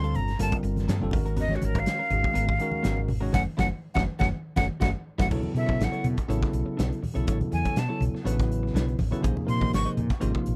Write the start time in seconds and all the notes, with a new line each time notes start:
Already playing: D2 D3 G3 C4 F4 A4 C6
0.04 C4 F4 A4, closed hi-hat
0.15 G1 A#5, closed hi-hat, low conga
0.28 muted clean electric guitar stroke, snare, closed hi-hat
0.39 G1 D3 G3 A#3 C4 F4 A4 A#4 A5, closed hi-hat
0.52 muted clean electric guitar stroke, kick, closed hi-hat
0.63 G1, muted clean electric guitar stroke, closed hi-hat
0.76 snare, closed hi-hat, high conga
0.88 G2 A#3 C4 F4 A4, snare, closed hi-hat
1.00 F1 D3 G3 C4 F4 A4, muted clean electric guitar stroke, high conga
1.11 G#1 D#3 G#3 C#4 F#4 A#4, muted clean electric guitar stroke, kick, open hi-hat, low conga
1.26 C#4 F#4 A#4, closed hi-hat
1.36 B3 C#4 F#4 A#4 D#5, closed hi-hat, low conga
1.49 D#3 G#3 C#4 F#4 C#5, muted clean electric guitar stroke, snare, high conga
1.56 F#4
1.61 G#1 A#4, muted clean electric guitar stroke, closed hi-hat, high conga
1.75 C#4 F#4 A#4, kick, closed hi-hat
1.79 F5
1.86 snare, closed hi-hat
1.99 C#4 F#4 A#4
2.10 G#1 D#3 G#3 C#4 F#4 G#4, closed hi-hat, low conga
2.23 muted clean electric guitar stroke, kick
2.34 G#1 B3 C#4 F#4 A#4, closed hi-hat
2.47 muted clean electric guitar stroke, kick
2.58 D#3 G#3 C#4 F#4 A#4, muted clean electric guitar stroke, closed hi-hat
2.71 high conga
2.83 G#1 B3 C#4 F#4 A#4, snare, closed hi-hat
2.96 muted clean electric guitar stroke, high conga
3.08 muted clean electric guitar stroke, open hi-hat, low conga
3.20 D#3 G#3 C#4 F#4 A#4 C#5
3.32 F#1 F#3 A3 C#4 E4 F#4 A4 F#5, kick, snare, high conga
3.57 F#1 F#3 A3 C#4 E4 F#4 A4 F#5, kick, snare, high conga
3.94 F#1 F#3 A3 C#4 E4 F#4 A4 F#5, kick, snare, high conga
4.19 F#1 F#3 A3 C#4 E4 F#4 A4 F#5, kick, snare, high conga
4.56 F#1 F#3 A3 C#4 E4 F#4 A4 F#5, kick, snare, high conga
4.80 F#1 F#3 A3 C#4 E4 F#4 A4 F#5, kick, snare, high conga
5.18 F#1 F#3 A3 C#4 E4 F#4 A4 F#5, kick, snare, high conga
5.29 B1 C#3 F#3 B3 D4 E4 A4 C#5, kick, crash
5.42 muted clean electric guitar stroke, high conga, low conga
5.54 B2 C#3 F#3 B3 E4 A4 E5, muted clean electric guitar stroke, closed hi-hat
5.66 E4 A4 C#5, kick, high conga
5.79 A1, snare, closed hi-hat
5.84 F#5
5.92 E4 A4 C#5, closed hi-hat
6.04 B2, closed hi-hat, low conga
6.17 muted clean electric guitar stroke, muted fretless electric bass stroke, kick, closed hi-hat
6.28 A1 C#3 F#3 B3 D4 E4 A4 C#5, closed hi-hat
6.43 kick, snare
6.53 B1, closed hi-hat
6.66 muted clean electric guitar stroke, muted fretless electric bass stroke
6.77 B1 D4 E4 A4 C#5, snare, closed hi-hat
6.90 muted clean electric guitar stroke, closed hi-hat
7.02 muted clean electric guitar stroke, muted fretless electric bass stroke, open hi-hat, high conga, low conga
7.14 B1 C#3 F#3 B3 E4 A4 C#5, closed hi-hat, high conga
7.27 A1 D4 E4 A4 C#5, kick, closed hi-hat
7.41 closed hi-hat, high conga, low conga
7.51 E2 G#5, muted clean electric guitar stroke, closed hi-hat
7.65 E4 A4 C#5, kick, closed hi-hat, high conga
7.76 B2 A5, muted clean electric guitar stroke, snare, closed hi-hat
7.88 C#3 F#3 B3 E4 A4 C#5
8.00 B1, closed hi-hat, low conga
8.13 muted fretless electric bass stroke, muted clean electric guitar stroke, snare
8.24 A1 C#3 F#3 B3 D4 E4 A4 B4 C#5, closed hi-hat
8.38 muted clean electric guitar stroke, kick, snare, closed hi-hat
8.52 closed hi-hat
8.63 muted clean electric guitar stroke, snare
8.74 B1 D4 E4 A4 C#5, snare, closed hi-hat
8.87 muted clean electric guitar stroke, closed hi-hat
8.99 A1, muted clean electric guitar stroke, open hi-hat, high conga, low conga
9.11 C#3 F#3 B3 E4 A4 B4 C#5, closed hi-hat, high conga
9.21 C3 F3 A#3 C#4 D#4 G#4 C5 D#5, kick, closed hi-hat
9.25 A#1
9.36 muted clean electric guitar stroke, low conga
9.45 A#2 C3 F3 A#3 D#4 A#4, muted clean electric guitar stroke, closed hi-hat
9.49 C6
9.61 G#4 C5 D#5, kick, high conga
9.73 G#1 C#6, muted clean electric guitar stroke, snare, closed hi-hat
9.85 G#4 C5 D#5, muted fretless electric bass stroke, closed hi-hat
9.97 A#2, closed hi-hat, low conga
10.10 muted clean electric guitar stroke, muted fretless electric bass stroke, kick, snare, closed hi-hat
10.20 G#1 C3 F3 A#3 C#4 D#4 F4 G#4 C5 D#5, closed hi-hat
10.33 muted clean electric guitar stroke, kick
10.46 A#1, closed hi-hat